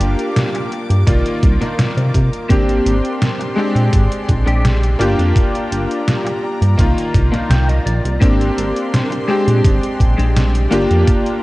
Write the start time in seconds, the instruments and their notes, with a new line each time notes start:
Already playing: clean electric guitar A#3 F4 G4, electric grand piano A#3 D4 F4 G4, string section A#4 F5 G5 D6
0.00 analog synth bass G1, closed hi-hat
0.19 closed hi-hat
0.36 snare, closed hi-hat
0.54 muted clean electric guitar stroke, closed hi-hat
0.71 muted clean electric guitar stroke, closed hi-hat
0.90 analog synth bass G2, closed hi-hat
1.07 analog synth bass C2, electric grand piano D#3 A#3 F4 D5, string section A#4 F5, muted clean electric guitar stroke, kick, closed hi-hat
1.25 muted clean electric guitar stroke, closed hi-hat
1.43 analog synth bass C2, kick, closed hi-hat
1.61 clean electric guitar A#3 D4 D#4 F4, snare, closed hi-hat
1.79 snare, closed hi-hat
1.96 analog synth bass C3, muted clean electric guitar stroke, closed hi-hat
2.14 analog synth bass C3, kick, closed hi-hat
2.33 closed hi-hat
2.49 analog synth bass G#1, electric grand piano A#3 C4 D4 G4, clean electric guitar A#3 C4 D4 G4, string section D5 G5 C6, kick, closed hi-hat
2.69 closed hi-hat
2.86 analog synth bass G#1, closed hi-hat
3.05 closed hi-hat
3.22 snare, closed hi-hat
3.39 muted clean electric guitar stroke, closed hi-hat
3.56 electric grand piano G#3 C4 D4 G4, clean electric guitar G#3 C4 D4 G4, string section G#3 G5
3.75 analog synth bass A#2, closed hi-hat
3.93 analog synth bass G#1, kick, closed hi-hat
4.11 muted clean electric guitar stroke, closed hi-hat
4.29 analog synth bass A#1, kick, closed hi-hat
4.46 analog synth bass A#1, clean electric guitar G#3 C4 D4 G4, closed hi-hat
4.65 snare, closed hi-hat
4.82 muted clean electric guitar stroke, closed hi-hat
4.99 analog synth bass G1, electric grand piano A#3 D4 F4 G4, clean electric guitar A#3 F4 G4, string section F4 A#5, closed hi-hat
5.18 analog synth bass F2, closed hi-hat
5.36 kick, closed hi-hat
5.55 closed hi-hat
5.71 analog synth bass G1, closed hi-hat
5.91 closed hi-hat
6.08 snare, closed hi-hat
6.25 muted clean electric guitar stroke, closed hi-hat
6.42 muted clean electric guitar stroke
6.61 analog synth bass G2, closed hi-hat
6.78 analog synth bass C2, electric grand piano D#3 A#3 F4, string section D#3 F5, muted clean electric guitar stroke, kick, closed hi-hat
6.97 muted clean electric guitar stroke, closed hi-hat
7.14 analog synth bass C2, kick, closed hi-hat
7.32 clean electric guitar A#3 D4 D#4 F4, snare, closed hi-hat
7.50 analog synth bass C2, clean electric guitar G5, snare, closed hi-hat
7.68 clean electric guitar D#5, muted clean electric guitar stroke, closed hi-hat
7.86 analog synth bass A#1, clean electric guitar D5, closed hi-hat
8.04 analog synth bass C2, closed hi-hat
8.20 analog synth bass G#1, clean electric guitar A#3 C4 D4 G4, electric grand piano A#3 C4 D4 G4, string section A#4 D5 G5 C6, kick, closed hi-hat
8.41 closed hi-hat
8.57 analog synth bass G#1, closed hi-hat
8.77 closed hi-hat
8.94 snare, closed hi-hat
9.11 muted clean electric guitar stroke, closed hi-hat
9.28 clean electric guitar G#3 C4 D4 G4, electric grand piano G#3 C4 D4 G4, string section G#3 D5
9.48 analog synth bass A#2, closed hi-hat
9.65 analog synth bass G#1, kick, closed hi-hat
9.82 muted clean electric guitar stroke, closed hi-hat
10.00 analog synth bass A#1, kick, closed hi-hat
10.18 analog synth bass A#1, clean electric guitar G#3 C4 D4 G4, closed hi-hat
10.37 snare, closed hi-hat
10.54 muted clean electric guitar stroke, closed hi-hat
10.71 analog synth bass G1, electric grand piano A#3 D4 F4 G4, clean electric guitar A#3 F4 G4, string section F4 A#5, closed hi-hat
10.91 analog synth bass F2, closed hi-hat
11.07 kick, closed hi-hat
11.26 closed hi-hat